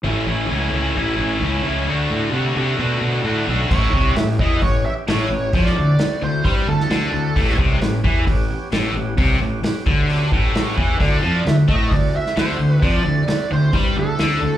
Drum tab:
CC |----------------|----------------|x---------------|----------------|
HH |----------------|----------------|----o---o---o---|o---o---o---o---|
SD |----------------|----------------|----o-------o---|-o--o------oo---|
BD |----------------|----------------|o-o---o-o-------|o-------o-------|

CC |----------------|----------------|----------------|----------------|
HH |o---o---o---o---|o---o---o---o---|o---o---o---o---|o---o---o---o---|
SD |-o--o-------o---|----o-------o---|----o------oo---|----o-------o---|
BD |o-o---o-o-------|o-----o---o---o-|o-----o-o-------|o-------o-------|